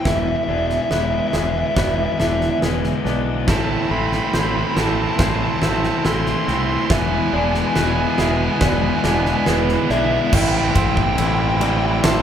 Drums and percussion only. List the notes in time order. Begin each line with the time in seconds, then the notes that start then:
0.05 kick, snare
0.70 snare
0.91 snare
1.33 snare
1.77 kick, snare
2.20 snare
2.41 snare
2.62 snare
2.84 snare
3.06 snare
3.48 kick, snare
4.12 snare
4.34 snare
4.77 snare
5.19 kick, snare
5.62 snare
5.83 snare
6.05 snare
6.26 snare
6.48 snare
6.90 kick, snare
7.54 snare
7.76 snare
8.18 snare
8.61 kick, snare
9.04 snare
9.26 snare
9.46 snare
9.69 snare
9.90 snare
10.33 kick, crash
10.75 kick, ride
10.97 kick
11.18 ride
11.61 ride
12.04 snare, ride